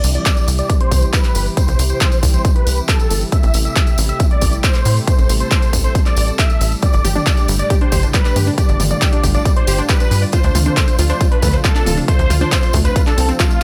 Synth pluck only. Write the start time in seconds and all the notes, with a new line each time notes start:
6.83 G3
6.94 D5
7.05 G4
7.15 D4
7.26 G4
7.37 D4
7.48 G3
7.59 D5
7.70 G4
7.81 D4
7.92 G4
8.03 D4
8.14 G3
8.25 D5
8.36 G4
8.47 D4
8.58 G4
8.69 D4
8.80 G3
8.91 D5
9.02 G4
9.13 D4
9.24 G4
9.35 D4
9.46 G3
9.57 D5
9.68 G4
9.78 D4
9.89 G4
10.00 D4
10.11 G3
10.22 D5
10.33 F4
10.44 D4
10.55 F4
10.66 D4
10.77 A3
10.88 C5
10.99 F4
11.10 D4
11.21 F4
11.31 D4
11.42 A3
11.53 C5
11.64 F4
11.75 D4
11.86 F4
11.97 D4
12.08 A3
12.19 C5
12.30 F4
12.41 D4
12.52 F4
12.63 D4
12.74 A3
12.85 C5
12.96 F4
13.07 D4
13.18 C4
13.29 C4
13.40 F4
13.51 A3